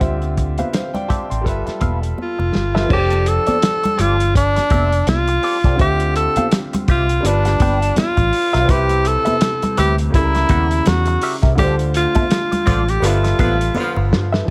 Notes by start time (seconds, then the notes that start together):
Already playing: D3
0.00 D2 C4 F4 G4 C5 E5, kick, closed hi-hat, low conga
0.05 E5
0.22 closed hi-hat, muted conga
0.37 muted clean electric guitar stroke, kick, closed hi-hat
0.58 F4 G4 B4 C5 E5 F5, closed hi-hat, high conga
0.73 C5 F5, snare, closed hi-hat, muted conga
0.94 D5 G5, muted clean electric guitar stroke, closed hi-hat, muted conga, low conga
1.08 F4 G4 C5 E5 A5, muted fingered electric bass stroke, kick, closed hi-hat, low conga
1.30 A1 G5 C6, muted clean electric guitar stroke, closed hi-hat
1.41 G3 F4 A4, muted clean electric guitar stroke
1.46 G1 B4 E5, kick, closed hi-hat
1.66 muted clean electric guitar stroke, muted fingered electric bass stroke, snare, closed hi-hat, muted conga
1.81 E1 F4 A4 B4 F5, kick, closed hi-hat, high conga
2.02 muted clean electric guitar stroke, closed hi-hat
2.18 muted clean electric guitar stroke, high conga
2.22 F4
2.39 F1, muted clean electric guitar stroke, muted conga
2.55 G1, snare
2.75 F4 A4 B4 E5, snare
2.86 F3 C4 D4
2.90 F1 G4 A4 D5, kick, crash, muted conga
3.10 closed hi-hat, muted conga
3.26 A4, muted clean electric guitar stroke, closed hi-hat
3.47 C4 G4 A4 D5, muted fingered electric bass stroke, closed hi-hat, high conga
3.62 muted clean electric guitar stroke, snare, closed hi-hat
3.83 muted clean electric guitar stroke, closed hi-hat, low conga
3.98 G1 C4 F4 G4 A4 D5, closed hi-hat, low conga
4.20 closed hi-hat
4.35 D4, muted clean electric guitar stroke, kick, closed hi-hat
4.56 muted clean electric guitar stroke, snare, closed hi-hat, muted conga
4.70 F1 C4 G4 A4 E5, kick, closed hi-hat, high conga
4.92 closed hi-hat
5.07 C2 F4, muted clean electric guitar stroke, snare, closed hi-hat, muted conga, high conga
5.28 muted clean electric guitar stroke, closed hi-hat
5.43 C4 G4 A4 D5, open hi-hat
5.64 C2 C4 G4 A4 D5, kick, snare, closed hi-hat
5.76 D2 D3 C4 F4 E5, kick, closed hi-hat
5.80 F4 G4 C5 E5
6.00 closed hi-hat
6.16 A4, muted clean electric guitar stroke, closed hi-hat
6.36 F4 G4 C5 F5, muted fingered electric bass stroke, closed hi-hat, high conga
6.51 muted clean electric guitar stroke, snare, closed hi-hat, muted conga
6.73 muted clean electric guitar stroke, closed hi-hat, muted conga, low conga
6.88 C2 F4 G4 C5 E5, kick, closed hi-hat, low conga
7.09 muted clean electric guitar stroke, closed hi-hat
7.21 G1 G3 D4
7.25 D4 F4 B4, muted clean electric guitar stroke, closed hi-hat, muted conga
7.45 muted clean electric guitar stroke, snare, closed hi-hat, muted conga
7.60 G1 D4 G4 B4 G5, kick, closed hi-hat, high conga
7.81 muted clean electric guitar stroke, closed hi-hat
7.96 F4, muted clean electric guitar stroke, muted fingered electric bass stroke, snare, closed hi-hat, high conga
8.17 A1, muted clean electric guitar stroke, kick, closed hi-hat, muted conga
8.33 open hi-hat
8.53 B1 D4 G4 B4 F5, snare, closed hi-hat
8.65 C3 C4
8.69 C2 C4 E4 G4 B4 E5, kick, closed hi-hat, muted conga
8.89 closed hi-hat, muted conga
9.04 A4, muted clean electric guitar stroke, closed hi-hat
9.25 C4 G4 B4 E5, muted fingered electric bass stroke, closed hi-hat, high conga
9.41 muted clean electric guitar stroke, snare, closed hi-hat
9.62 muted clean electric guitar stroke, closed hi-hat, muted conga, low conga
9.77 D2 C4 G4 B4 E5, closed hi-hat, low conga
9.98 muted clean electric guitar stroke, closed hi-hat
10.10 C#2 C#3 G3, kick, closed hi-hat
10.15 E4 A4, muted clean electric guitar stroke, muted conga
10.24 A#4
10.35 muted clean electric guitar stroke, snare, closed hi-hat, muted conga
10.49 D#2 C#4 G4 A#4 F#5, kick, closed hi-hat, high conga
10.71 muted clean electric guitar stroke, closed hi-hat
10.86 E2 F#4, muted clean electric guitar stroke, snare, closed hi-hat, high conga
11.06 muted clean electric guitar stroke, closed hi-hat
11.21 C#4 G4 A#4 E5, open hi-hat
11.43 C2 C#4 G4 A#4 E5, kick, snare, closed hi-hat
11.55 D2 D3 A3 C4 F4 G4 A4 D5, kick, closed hi-hat, muted conga, low conga
11.60 F4 C5
11.79 closed hi-hat
11.94 F4, muted clean electric guitar stroke, closed hi-hat
12.15 C4 F4 A4 E5, muted fingered electric bass stroke, kick, closed hi-hat, high conga
12.31 muted clean electric guitar stroke, snare, closed hi-hat
12.52 muted clean electric guitar stroke, closed hi-hat, low conga
12.66 A1 D3 F3 C4 F4 A4 D5, kick, closed hi-hat, low conga
12.88 G4, closed hi-hat
13.00 G1 D3 F3 G3 B3 F4 A4, muted clean electric guitar stroke, closed hi-hat
13.06 F4 B4 E5
13.24 muted clean electric guitar stroke, snare, closed hi-hat
13.39 A1 D3 F3 B3 F4 A4 B4 F5, kick, closed hi-hat, high conga
13.60 muted clean electric guitar stroke, closed hi-hat
13.75 D3 F3 B3 F4, muted fingered electric bass stroke, muted clean electric guitar stroke, muted conga, high conga
13.96 G1, muted clean electric guitar stroke, muted conga
14.11 G2, snare
14.32 F4 A4 B4 E5, snare
14.44 F3 E4